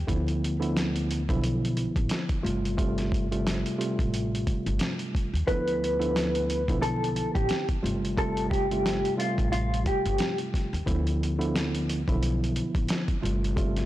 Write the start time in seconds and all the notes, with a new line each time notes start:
0.07 D2 D3 F3 B3 E4, kick, closed hi-hat
0.28 closed hi-hat
0.44 closed hi-hat
0.59 D3 F3 B3 E4, closed hi-hat
0.77 snare, closed hi-hat
0.96 closed hi-hat
1.11 closed hi-hat
1.29 B1 D3 F3 B3 E4, kick, closed hi-hat
1.44 closed hi-hat
1.65 closed hi-hat
1.77 closed hi-hat
1.96 A1, kick, closed hi-hat
2.09 snare, closed hi-hat
2.29 kick, closed hi-hat
2.43 G1 C3 G3 A3 F4, closed hi-hat
2.65 closed hi-hat
2.77 C3 G3 A3 F4, kick, closed hi-hat
2.98 snare, closed hi-hat
3.12 kick, closed hi-hat
3.31 C3 G3 A3 F4, closed hi-hat
3.47 snare, closed hi-hat
3.66 closed hi-hat
3.78 C3 G3 A3 F4, closed hi-hat
3.99 A1, kick, closed hi-hat
4.14 closed hi-hat
4.35 closed hi-hat
4.47 kick, closed hi-hat
4.66 G1, closed hi-hat
4.79 snare, closed hi-hat
4.99 closed hi-hat
5.15 kick, closed hi-hat
5.34 D#2, closed hi-hat
5.47 D2 D3 F3 B3 E4 B4, kick, closed hi-hat
5.68 closed hi-hat
5.84 closed hi-hat
5.99 D3 F3 B3 E4, closed hi-hat
6.16 snare, closed hi-hat
6.35 closed hi-hat
6.50 closed hi-hat
6.68 B1 D3 F3 B3 E4, kick, closed hi-hat
6.82 A4, closed hi-hat
7.04 closed hi-hat
7.16 closed hi-hat
7.35 A1 G4, kick, closed hi-hat
7.49 snare, closed hi-hat
7.69 kick, closed hi-hat
7.82 G1 C3 G3 A3 F4, closed hi-hat
8.05 closed hi-hat
8.17 C3 G3 A3 F4 A4, kick, closed hi-hat
8.37 closed hi-hat
8.50 G4, kick, closed hi-hat
8.71 C3 G3 A3 F4, closed hi-hat
8.86 snare, closed hi-hat
9.05 closed hi-hat
9.17 C3 G3 A3 F4, closed hi-hat
9.38 A1, kick, closed hi-hat
9.52 F4, closed hi-hat
9.74 closed hi-hat
9.86 G4, kick, closed hi-hat
10.06 G1, closed hi-hat
10.18 snare, closed hi-hat
10.38 closed hi-hat
10.54 kick, snare, closed hi-hat
10.73 D#2, closed hi-hat
10.86 D2 D3 F3 B3 E4, kick, closed hi-hat
11.07 closed hi-hat
11.23 closed hi-hat
11.38 D3 F3 B3 E4, closed hi-hat
11.56 snare, closed hi-hat
11.75 closed hi-hat
11.90 closed hi-hat
12.08 B1 D3 F3 B3 E4, kick, closed hi-hat
12.23 closed hi-hat
12.44 closed hi-hat
12.56 closed hi-hat
12.75 A1, kick, closed hi-hat
12.88 snare, closed hi-hat
13.08 kick, closed hi-hat
13.22 G1 C3 G3 A3 F4, closed hi-hat
13.44 closed hi-hat
13.56 C3 G3 A3 F4, kick, closed hi-hat
13.77 snare, closed hi-hat